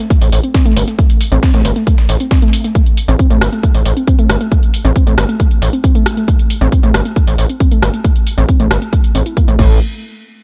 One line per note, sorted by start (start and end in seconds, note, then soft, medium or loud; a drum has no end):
0.10 0.16 A3 medium
0.10 kick loud
0.10 closed hi-hat medium
0.21 0.28 A1 medium
0.21 open hi-hat medium
0.32 0.39 A1 medium
0.32 closed hi-hat medium
0.32 open hi-hat loud
0.43 0.47 C4 medium
0.43 closed hi-hat medium
0.54 0.62 C4 loud
0.54 kick loud
0.54 snare loud
0.54 closed hi-hat medium
0.66 0.73 A3 loud
0.66 closed hi-hat medium
0.76 0.83 G1 medium
0.76 closed hi-hat medium
0.76 open hi-hat loud
0.88 0.93 A3 medium
0.88 closed hi-hat medium
0.88 closed hi-hat soft
0.99 1.04 A3 medium
0.99 kick loud
0.99 closed hi-hat medium
1.10 closed hi-hat medium
1.10 closed hi-hat soft
1.21 closed hi-hat medium
1.21 open hi-hat loud
1.32 1.39 A1 loud
1.32 1.35 C4 medium
1.32 closed hi-hat medium
1.43 1.51 C4 loud
1.43 kick loud
1.43 snare loud
1.43 closed hi-hat medium
1.54 1.61 A1 medium
1.54 1.62 A3 loud
1.54 snare soft
1.54 closed hi-hat medium
1.65 1.72 G1 loud
1.65 closed hi-hat medium
1.65 open hi-hat loud
1.76 1.81 A3 medium
1.76 closed hi-hat soft
1.87 1.92 A3 medium
1.87 kick loud
1.87 closed hi-hat medium
1.98 snare medium
1.98 closed hi-hat soft
2.09 2.16 A1 medium
2.09 closed hi-hat medium
2.09 open hi-hat loud
2.20 2.23 C4 medium
2.20 closed hi-hat medium
2.31 2.39 C4 loud
2.31 kick loud
2.31 snare loud
2.31 closed hi-hat medium
2.42 2.50 A3 loud
2.42 closed hi-hat medium
2.53 closed hi-hat medium
2.53 open hi-hat loud
2.64 2.70 A3 medium
2.64 closed hi-hat medium
2.75 2.81 A3 medium
2.75 kick loud
2.75 closed hi-hat medium
2.86 closed hi-hat medium
2.97 open hi-hat loud
3.08 3.15 A1 loud
3.08 3.12 C4 medium
3.08 closed hi-hat medium
3.19 3.27 C4 loud
3.19 kick loud
3.19 closed hi-hat medium
3.30 3.37 A1 medium
3.30 3.38 A3 loud
3.30 closed hi-hat medium
3.41 3.48 G1 loud
3.41 cross-stick loud
3.41 open hi-hat loud
3.53 3.58 A3 medium
3.53 closed hi-hat soft
3.63 3.69 A3 medium
3.63 kick loud
3.63 closed hi-hat medium
3.75 3.81 A1 medium
3.75 open hi-hat medium
3.86 3.92 A1 medium
3.86 open hi-hat loud
3.97 4.00 C4 medium
3.97 closed hi-hat medium
4.08 4.15 C4 loud
4.08 kick loud
4.08 closed hi-hat medium
4.19 4.27 A3 loud
4.19 closed hi-hat medium
4.29 4.36 G1 medium
4.29 cross-stick medium
4.29 open hi-hat loud
4.41 4.46 A3 medium
4.41 closed hi-hat medium
4.52 4.57 A3 medium
4.52 kick loud
4.52 closed hi-hat medium
4.63 closed hi-hat soft
4.74 open hi-hat loud
4.85 4.91 A1 loud
4.85 4.88 C4 medium
4.85 closed hi-hat soft
4.96 5.04 C4 loud
4.96 kick loud
4.96 closed hi-hat medium
5.07 5.14 A1 medium
5.07 5.15 A3 loud
5.07 closed hi-hat soft
5.18 5.25 G1 loud
5.18 cross-stick loud
5.18 open hi-hat loud
5.29 5.34 A3 medium
5.29 closed hi-hat medium
5.40 5.45 A3 medium
5.40 kick loud
5.40 closed hi-hat medium
5.51 closed hi-hat soft
5.62 5.69 A1 loud
5.62 open hi-hat loud
5.73 5.76 C4 medium
5.73 closed hi-hat medium
5.84 5.92 C4 loud
5.84 kick loud
5.84 closed hi-hat medium
5.95 6.03 A3 loud
5.95 closed hi-hat medium
6.06 cross-stick medium
6.06 open hi-hat loud
6.17 6.22 A3 medium
6.17 closed hi-hat soft
6.28 6.33 A3 medium
6.28 kick loud
6.28 closed hi-hat medium
6.39 closed hi-hat medium
6.50 open hi-hat loud
6.61 6.68 A1 loud
6.61 6.64 C4 medium
6.61 closed hi-hat medium
6.72 6.80 C4 loud
6.72 kick loud
6.72 closed hi-hat medium
6.83 6.90 A1 medium
6.83 6.91 A3 loud
6.83 closed hi-hat medium
6.94 7.01 G1 loud
6.94 cross-stick loud
6.94 open hi-hat loud
7.05 7.11 A3 medium
7.05 closed hi-hat soft
7.16 7.22 A3 medium
7.16 kick loud
7.16 closed hi-hat medium
7.27 7.34 A1 medium
7.27 open hi-hat medium
7.38 7.45 A1 medium
7.38 open hi-hat loud
7.50 7.53 C4 medium
7.50 closed hi-hat medium
7.60 7.68 C4 loud
7.60 kick loud
7.60 closed hi-hat medium
7.72 7.79 A3 loud
7.72 closed hi-hat medium
7.83 7.89 G1 medium
7.83 cross-stick medium
7.83 open hi-hat loud
7.94 7.99 A3 medium
7.94 closed hi-hat medium
8.05 8.10 A3 medium
8.05 kick loud
8.05 closed hi-hat medium
8.16 closed hi-hat medium
8.27 open hi-hat loud
8.38 8.44 A1 loud
8.38 8.41 C4 medium
8.38 closed hi-hat medium
8.49 8.57 C4 loud
8.49 kick loud
8.49 closed hi-hat medium
8.60 8.67 A1 medium
8.60 8.68 A3 loud
8.60 closed hi-hat medium
8.71 8.78 G1 medium
8.71 cross-stick loud
8.71 open hi-hat loud
8.82 8.87 A3 medium
8.82 closed hi-hat medium
8.93 8.98 A3 medium
8.93 kick loud
8.93 closed hi-hat medium
9.04 closed hi-hat medium
9.15 9.22 A1 medium
9.15 9.18 C4 medium
9.15 open hi-hat loud
9.26 9.34 E4 medium
9.26 closed hi-hat medium
9.37 9.40 A#3 loud
9.37 kick loud
9.37 closed hi-hat medium
9.48 9.55 A1 medium
9.48 9.56 A3 loud
9.48 closed hi-hat medium
9.59 9.79 A1 medium
9.59 9.79 A3 medium
9.59 kick loud
9.59 crash medium